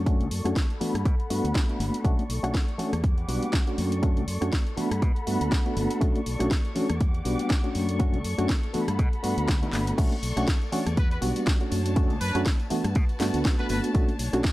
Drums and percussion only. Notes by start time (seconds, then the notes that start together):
0.06 kick, closed hi-hat
0.19 closed hi-hat, tambourine, high conga
0.30 open hi-hat, tambourine
0.45 cross-stick, closed hi-hat
0.55 kick, snare, closed hi-hat, tambourine, high conga
0.70 closed hi-hat, tambourine
0.81 open hi-hat, tambourine, low conga
0.95 cross-stick, closed hi-hat, tambourine, high conga
1.05 kick, closed hi-hat
1.20 closed hi-hat, tambourine
1.30 open hi-hat
1.45 closed hi-hat, tambourine, high conga
1.55 kick, snare, closed hi-hat
1.69 closed hi-hat
1.80 open hi-hat, tambourine, high conga
1.94 closed hi-hat
2.05 kick, closed hi-hat
2.18 closed hi-hat, tambourine, high conga
2.29 open hi-hat, tambourine
2.44 cross-stick, closed hi-hat
2.54 kick, snare, closed hi-hat, tambourine, high conga
2.68 closed hi-hat, tambourine
2.78 open hi-hat, tambourine, low conga
2.93 cross-stick, closed hi-hat, tambourine, high conga
3.04 kick, closed hi-hat
3.18 closed hi-hat
3.29 open hi-hat
3.42 closed hi-hat, tambourine, high conga
3.53 kick, snare, closed hi-hat
3.67 closed hi-hat
3.78 open hi-hat, tambourine, high conga
3.92 closed hi-hat, tambourine
4.03 kick, closed hi-hat
4.17 closed hi-hat, tambourine, high conga
4.27 open hi-hat, tambourine
4.42 cross-stick, closed hi-hat
4.51 kick, snare, closed hi-hat, tambourine, high conga
4.67 closed hi-hat
4.77 open hi-hat, tambourine, low conga
4.91 cross-stick, closed hi-hat, tambourine, high conga
5.02 kick, closed hi-hat
5.16 closed hi-hat, tambourine
5.26 open hi-hat, tambourine
5.41 closed hi-hat, tambourine, high conga
5.52 kick, snare, closed hi-hat
5.66 closed hi-hat
5.77 open hi-hat, tambourine, high conga
5.91 closed hi-hat, tambourine
6.01 kick, closed hi-hat
6.15 closed hi-hat, tambourine, high conga
6.26 open hi-hat, tambourine
6.40 cross-stick, closed hi-hat
6.51 kick, snare, closed hi-hat, tambourine, high conga
6.64 closed hi-hat, tambourine
6.76 open hi-hat, tambourine, low conga
6.89 cross-stick, closed hi-hat, tambourine, high conga
7.00 kick, closed hi-hat
7.14 closed hi-hat, tambourine
7.25 open hi-hat, tambourine
7.39 closed hi-hat, tambourine, high conga
7.50 kick, snare, closed hi-hat, tambourine
7.64 closed hi-hat
7.75 open hi-hat, tambourine, high conga
7.88 closed hi-hat, tambourine
8.00 kick, closed hi-hat
8.14 closed hi-hat, tambourine, high conga
8.24 open hi-hat, tambourine
8.39 cross-stick, closed hi-hat, tambourine
8.49 kick, snare, closed hi-hat, tambourine, high conga
8.63 closed hi-hat, tambourine
8.74 open hi-hat, tambourine, low conga
8.88 cross-stick, closed hi-hat, tambourine, high conga
8.99 kick, closed hi-hat, tambourine
9.13 closed hi-hat, tambourine
9.23 open hi-hat, tambourine
9.38 closed hi-hat, tambourine, high conga
9.48 kick, snare, closed hi-hat
9.63 closed hi-hat, tambourine
9.73 clap, open hi-hat, tambourine, high conga
9.87 closed hi-hat, tambourine
9.98 kick, closed hi-hat, crash, tambourine
10.12 closed hi-hat, tambourine, high conga
10.23 open hi-hat, tambourine
10.37 cross-stick, closed hi-hat, tambourine
10.48 kick, snare, closed hi-hat, tambourine, high conga
10.62 closed hi-hat, tambourine
10.72 open hi-hat, tambourine, low conga
10.86 cross-stick, closed hi-hat, tambourine, high conga
10.97 kick, closed hi-hat, tambourine
11.11 closed hi-hat, tambourine
11.22 open hi-hat, tambourine
11.36 closed hi-hat, tambourine, high conga
11.47 kick, snare, closed hi-hat, tambourine
11.60 closed hi-hat, tambourine
11.72 open hi-hat, tambourine, high conga
11.86 closed hi-hat, tambourine
11.96 kick, closed hi-hat, tambourine
12.10 closed hi-hat, tambourine, high conga
12.21 open hi-hat, tambourine
12.35 cross-stick, closed hi-hat, tambourine
12.46 kick, snare, closed hi-hat, tambourine, high conga
12.60 closed hi-hat, tambourine
12.70 open hi-hat, tambourine, low conga
12.84 cross-stick, closed hi-hat, tambourine, high conga
12.95 kick, closed hi-hat, tambourine
13.09 closed hi-hat, tambourine
13.20 snare, open hi-hat, tambourine
13.34 closed hi-hat, tambourine, high conga
13.45 kick, snare, closed hi-hat, tambourine
13.59 closed hi-hat, tambourine
13.69 open hi-hat, tambourine, high conga
13.83 closed hi-hat, tambourine
13.95 kick, closed hi-hat, tambourine
14.08 closed hi-hat, tambourine, high conga
14.19 open hi-hat, tambourine
14.33 cross-stick, closed hi-hat, tambourine
14.43 kick, snare, closed hi-hat, tambourine, high conga